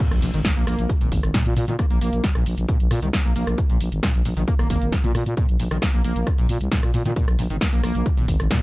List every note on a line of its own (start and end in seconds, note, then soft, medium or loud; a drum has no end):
0.00 impact medium
0.11 0.20 A#1 medium
0.11 cross-stick medium
0.11 closed hi-hat medium
0.22 0.31 A#1 loud
0.22 0.26 A#2 medium
0.22 open hi-hat loud
0.22 shaker medium
0.34 0.42 G#1 medium
0.34 0.40 D#3 medium
0.34 closed hi-hat medium
0.34 shaker soft
0.45 0.51 A#3 medium
0.45 kick loud
0.45 snare loud
0.45 closed hi-hat medium
0.45 shaker soft
0.56 0.64 A#1 medium
0.56 0.65 A#3 medium
0.56 closed hi-hat medium
0.67 0.76 A#1 loud
0.67 0.91 A#3 medium
0.67 cross-stick medium
0.67 open hi-hat medium
0.67 shaker medium
0.79 0.87 A#1 loud
0.79 closed hi-hat medium
0.79 shaker soft
0.89 0.93 A#2 medium
0.89 kick loud
0.89 closed hi-hat medium
0.89 shaker soft
1.01 1.09 G#1 medium
1.01 1.10 A#2 medium
1.01 closed hi-hat medium
1.01 shaker soft
1.12 1.21 G#1 loud
1.12 kick medium
1.12 open hi-hat loud
1.12 shaker medium
1.23 1.32 G#1 medium
1.23 cross-stick medium
1.23 closed hi-hat medium
1.23 shaker soft
1.34 1.44 A#2 medium
1.34 kick loud
1.34 snare loud
1.34 closed hi-hat medium
1.34 shaker soft
1.46 1.54 A#2 medium
1.46 closed hi-hat medium
1.57 1.60 A#2 medium
1.57 1.65 A#2 loud
1.57 open hi-hat medium
1.57 shaker medium
1.68 1.76 A#2 medium
1.68 1.74 D#3 medium
1.68 closed hi-hat medium
1.68 shaker soft
1.79 1.85 A#3 medium
1.79 kick loud
1.79 cross-stick medium
1.79 closed hi-hat medium
1.79 shaker soft
1.90 1.99 A#1 medium
1.90 2.00 A#3 medium
1.90 closed hi-hat medium
2.01 2.10 A#1 loud
2.01 2.25 A#3 medium
2.01 open hi-hat loud
2.01 shaker medium
2.13 2.21 A#1 medium
2.13 closed hi-hat medium
2.13 shaker soft
2.24 2.28 A#2 medium
2.24 kick loud
2.24 snare loud
2.24 closed hi-hat medium
2.24 shaker soft
2.35 2.44 A#1 medium
2.35 2.44 A#2 medium
2.35 cross-stick medium
2.35 closed hi-hat medium
2.46 2.55 A#1 loud
2.46 open hi-hat loud
2.46 shaker medium
2.58 2.66 A#1 loud
2.58 closed hi-hat medium
2.58 shaker soft
2.69 2.78 A#2 medium
2.69 kick loud
2.69 closed hi-hat medium
2.69 shaker soft
2.80 2.88 A#1 medium
2.80 closed hi-hat medium
2.80 shaker soft
2.91 2.95 A#2 medium
2.91 3.00 A#2 loud
2.91 cross-stick medium
2.91 open hi-hat loud
2.91 shaker medium
3.02 3.11 C2 loud
3.02 3.08 D#3 medium
3.02 closed hi-hat medium
3.02 shaker soft
3.13 3.20 A#3 medium
3.13 kick loud
3.13 snare loud
3.13 closed hi-hat medium
3.13 shaker soft
3.25 3.33 A#1 medium
3.25 3.34 A#3 medium
3.25 closed hi-hat medium
3.36 3.44 A#1 loud
3.36 3.60 A#3 medium
3.36 open hi-hat medium
3.36 shaker medium
3.47 3.56 A#1 medium
3.47 cross-stick medium
3.47 closed hi-hat medium
3.47 shaker soft
3.58 3.62 A#2 medium
3.58 kick loud
3.58 closed hi-hat medium
3.58 shaker soft
3.70 3.78 A#1 medium
3.70 3.79 A#2 medium
3.70 closed hi-hat medium
3.81 3.89 A#1 loud
3.81 open hi-hat loud
3.81 shaker medium
3.92 4.00 G#1 medium
3.92 closed hi-hat medium
3.92 shaker soft
4.03 4.12 A#2 medium
4.03 kick loud
4.03 cross-stick medium
4.03 snare loud
4.03 closed hi-hat medium
4.03 shaker soft
4.14 4.23 A#1 medium
4.14 closed hi-hat medium
4.25 4.34 A#1 loud
4.25 4.29 A#2 medium
4.25 open hi-hat medium
4.25 shaker medium
4.37 4.45 A#1 loud
4.37 4.43 D#3 medium
4.37 closed hi-hat medium
4.37 shaker soft
4.48 4.54 A#3 medium
4.48 kick loud
4.48 closed hi-hat medium
4.48 shaker soft
4.59 4.67 G#1 medium
4.59 4.68 A#3 medium
4.59 cross-stick medium
4.59 closed hi-hat medium
4.59 shaker soft
4.70 4.79 G#1 loud
4.70 4.94 A#3 medium
4.70 kick medium
4.70 open hi-hat loud
4.70 shaker medium
4.82 4.90 G#1 medium
4.82 closed hi-hat medium
4.82 shaker soft
4.92 4.96 A#2 medium
4.92 kick loud
4.92 snare loud
4.92 closed hi-hat medium
4.92 shaker soft
5.04 5.13 A#2 medium
5.04 5.12 A#2 medium
5.04 closed hi-hat medium
5.15 5.24 A#2 loud
5.15 cross-stick medium
5.15 open hi-hat loud
5.15 shaker medium
5.26 5.35 A#2 medium
5.26 closed hi-hat medium
5.26 shaker soft
5.37 5.47 A#2 medium
5.37 kick loud
5.37 closed hi-hat medium
5.37 shaker soft
5.49 5.57 A#1 medium
5.49 closed hi-hat medium
5.60 5.68 A#1 loud
5.60 5.63 A#2 medium
5.60 open hi-hat loud
5.60 shaker medium
5.71 5.79 A#1 medium
5.71 5.77 D#3 medium
5.71 cross-stick medium
5.71 closed hi-hat medium
5.71 shaker soft
5.82 5.88 A#3 medium
5.82 kick loud
5.82 snare loud
5.82 closed hi-hat medium
5.82 shaker soft
5.94 6.02 A#1 medium
5.94 6.03 A#3 medium
5.94 closed hi-hat medium
6.04 6.13 A#1 medium
6.04 6.28 A#3 medium
6.04 open hi-hat medium
6.04 shaker medium
6.16 6.24 A#1 loud
6.16 closed hi-hat medium
6.16 shaker soft
6.27 6.31 A#2 medium
6.27 kick loud
6.27 cross-stick medium
6.27 closed hi-hat medium
6.27 shaker soft
6.38 6.47 A#1 medium
6.38 6.47 A#2 medium
6.38 closed hi-hat medium
6.38 shaker soft
6.49 6.58 A#2 loud
6.49 open hi-hat loud
6.49 shaker medium
6.61 6.69 C2 medium
6.61 closed hi-hat medium
6.61 shaker soft
6.72 6.81 A#2 medium
6.72 kick loud
6.72 snare loud
6.72 closed hi-hat medium
6.72 shaker soft
6.83 6.91 A#2 medium
6.83 cross-stick medium
6.83 closed hi-hat medium
6.83 shaker soft
6.94 7.03 A#2 loud
6.94 6.98 A#2 medium
6.94 open hi-hat loud
6.94 shaker medium
7.05 7.14 A#2 medium
7.05 7.11 D#3 medium
7.05 closed hi-hat medium
7.05 shaker soft
7.16 7.26 A#2 medium
7.16 kick loud
7.16 closed hi-hat medium
7.16 shaker soft
7.28 7.36 A#1 medium
7.28 cross-stick medium
7.28 closed hi-hat medium
7.39 7.47 A#1 loud
7.39 7.43 A#2 medium
7.39 open hi-hat loud
7.39 shaker medium
7.50 7.59 G#1 medium
7.50 7.56 D#3 medium
7.50 closed hi-hat medium
7.50 shaker soft
7.61 7.67 A#3 medium
7.61 kick loud
7.61 snare loud
7.61 closed hi-hat medium
7.61 shaker soft
7.73 7.81 A#1 medium
7.73 7.82 A#3 medium
7.73 closed hi-hat medium
7.83 7.92 A#1 loud
7.83 8.07 A#3 medium
7.83 cross-stick medium
7.83 open hi-hat medium
7.83 shaker medium
7.95 8.03 A#1 loud
7.95 closed hi-hat medium
7.95 shaker soft
8.06 8.10 A#2 medium
8.06 kick loud
8.06 closed hi-hat medium
8.06 shaker soft
8.17 8.26 G#1 medium
8.17 8.26 A#2 medium
8.17 closed hi-hat medium
8.17 shaker soft
8.28 8.37 G#1 loud
8.28 kick medium
8.28 open hi-hat loud
8.28 shaker medium
8.40 8.48 G#1 loud
8.40 cross-stick medium
8.40 closed hi-hat medium
8.40 shaker soft
8.51 8.60 A#2 medium
8.51 kick loud
8.51 snare loud
8.51 closed hi-hat medium
8.51 shaker soft